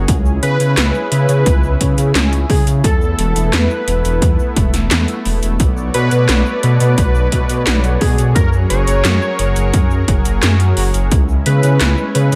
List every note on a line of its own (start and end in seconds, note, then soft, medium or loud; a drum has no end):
0.00 2.80 G#4 medium
0.08 0.38 C#2 loud
0.08 2.81 C#4 medium
0.08 2.81 E4 medium
0.08 kick loud
0.08 closed hi-hat medium
0.08 shaker soft
0.26 shaker soft
0.43 0.58 C#3 medium
0.43 1.08 B4 loud
0.43 closed hi-hat medium
0.60 0.75 C#3 loud
0.60 closed hi-hat medium
0.60 shaker medium
0.77 0.92 C#2 loud
0.77 snare loud
0.77 clap medium
0.77 closed hi-hat medium
0.77 shaker soft
0.95 shaker soft
1.11 1.27 C#3 medium
1.11 2.11 B4 loud
1.11 closed hi-hat medium
1.29 1.44 C#3 loud
1.29 closed hi-hat medium
1.29 shaker medium
1.46 1.76 C#2 medium
1.46 kick loud
1.46 closed hi-hat medium
1.46 shaker soft
1.63 shaker soft
1.81 1.96 C#3 medium
1.81 kick medium
1.81 closed hi-hat medium
1.98 2.13 C#3 loud
1.98 closed hi-hat medium
1.98 shaker medium
2.15 2.45 C#2 medium
2.15 snare loud
2.15 clap medium
2.15 closed hi-hat medium
2.15 shaker soft
2.33 closed hi-hat soft
2.33 shaker soft
2.50 2.65 C#3 medium
2.50 2.64 G#4 medium
2.50 kick loud
2.50 open hi-hat medium
2.67 2.82 C#3 medium
2.67 closed hi-hat medium
2.67 shaker medium
2.84 3.14 E2 loud
2.84 8.32 A3 medium
2.84 5.57 B3 medium
2.84 5.57 E4 medium
2.84 3.49 A4 loud
2.84 3.55 A4 loud
2.84 kick loud
2.84 closed hi-hat medium
2.84 shaker soft
3.02 shaker soft
3.19 3.33 E1 medium
3.19 closed hi-hat medium
3.36 3.51 E1 medium
3.36 closed hi-hat medium
3.36 shaker medium
3.53 3.68 E2 loud
3.53 4.53 B4 loud
3.53 4.57 B4 loud
3.53 snare loud
3.53 clap medium
3.53 closed hi-hat medium
3.53 shaker medium
3.70 shaker soft
3.88 4.02 E1 medium
3.88 closed hi-hat medium
4.05 4.20 E1 loud
4.05 closed hi-hat medium
4.05 shaker medium
4.22 4.37 E2 loud
4.22 kick loud
4.22 closed hi-hat medium
4.22 shaker medium
4.39 shaker soft
4.56 4.71 E1 medium
4.56 kick loud
4.56 closed hi-hat medium
4.74 4.89 E1 medium
4.74 snare soft
4.74 closed hi-hat medium
4.74 shaker medium
4.91 5.06 E2 medium
4.91 snare loud
4.91 clap medium
4.91 closed hi-hat medium
4.91 shaker soft
5.08 closed hi-hat soft
5.08 shaker soft
5.25 5.40 E1 loud
5.25 open hi-hat medium
5.43 5.58 E1 medium
5.43 closed hi-hat medium
5.43 shaker medium
5.59 5.90 B1 loud
5.59 8.33 B3 medium
5.59 11.07 F#4 medium
5.59 11.07 C#5 medium
5.59 8.33 D5 medium
5.59 kick loud
5.59 closed hi-hat medium
5.59 shaker medium
5.77 shaker soft
5.94 6.09 B2 medium
5.94 6.59 B4 loud
5.94 6.59 B4 medium
5.94 closed hi-hat medium
6.11 6.27 B2 loud
6.11 closed hi-hat soft
6.11 shaker medium
6.29 6.44 B1 loud
6.29 snare loud
6.29 clap medium
6.29 closed hi-hat medium
6.29 shaker medium
6.46 shaker soft
6.63 6.78 B2 medium
6.63 7.97 B4 loud
6.63 8.02 B4 loud
6.63 closed hi-hat medium
6.80 6.95 B2 loud
6.80 closed hi-hat medium
6.80 shaker medium
6.98 7.28 B1 medium
6.98 kick loud
6.98 closed hi-hat medium
6.98 shaker medium
7.15 shaker soft
7.32 7.47 B2 medium
7.32 kick medium
7.32 closed hi-hat medium
7.49 7.64 B2 loud
7.49 closed hi-hat soft
7.49 shaker medium
7.67 7.97 B1 medium
7.67 snare loud
7.67 clap medium
7.67 closed hi-hat medium
7.67 shaker medium
7.84 closed hi-hat soft
7.84 shaker soft
8.01 8.16 B2 medium
8.01 8.35 G#4 medium
8.01 8.33 G#4 medium
8.01 kick loud
8.01 open hi-hat medium
8.18 8.33 B2 medium
8.18 closed hi-hat soft
8.18 shaker medium
8.35 8.66 F#2 loud
8.35 11.09 F#3 medium
8.35 11.09 G#4 medium
8.35 8.49 A#4 loud
8.35 11.09 A#4 medium
8.35 kick loud
8.35 closed hi-hat medium
8.35 shaker medium
8.53 shaker soft
8.70 8.85 F#1 medium
8.70 10.04 C#5 loud
8.70 closed hi-hat medium
8.87 9.02 F#1 loud
8.87 closed hi-hat medium
8.87 shaker medium
9.04 9.20 F#2 loud
9.04 snare loud
9.04 clap medium
9.04 closed hi-hat medium
9.04 shaker medium
9.22 shaker soft
9.39 9.54 F#1 medium
9.39 closed hi-hat medium
9.56 9.71 F#1 loud
9.56 closed hi-hat medium
9.56 shaker medium
9.74 10.04 F#2 medium
9.74 kick loud
9.74 closed hi-hat medium
9.74 shaker medium
9.91 shaker soft
10.08 10.23 F#1 medium
10.08 kick loud
10.08 closed hi-hat medium
10.25 10.40 F#1 loud
10.25 closed hi-hat medium
10.25 shaker medium
10.43 10.73 F#2 medium
10.43 snare loud
10.43 clap medium
10.43 closed hi-hat medium
10.43 shaker medium
10.60 closed hi-hat soft
10.60 shaker soft
10.77 10.92 F#1 medium
10.77 open hi-hat medium
10.94 11.09 F#1 medium
10.94 closed hi-hat soft
10.94 shaker medium
11.11 11.41 C#2 loud
11.11 12.35 G#3 medium
11.11 12.35 C#4 medium
11.11 12.35 E4 medium
11.11 kick loud
11.11 closed hi-hat medium
11.11 shaker medium
11.29 shaker soft
11.46 11.61 C#3 medium
11.46 12.11 B4 loud
11.46 closed hi-hat medium
11.63 11.78 C#3 medium
11.63 closed hi-hat medium
11.63 shaker medium
11.81 11.96 C#2 loud
11.81 snare loud
11.81 clap loud
11.81 closed hi-hat medium
11.81 shaker medium
11.98 shaker soft
12.15 12.30 C#3 medium
12.15 12.35 B4 loud
12.15 closed hi-hat medium
12.32 12.35 C#3 loud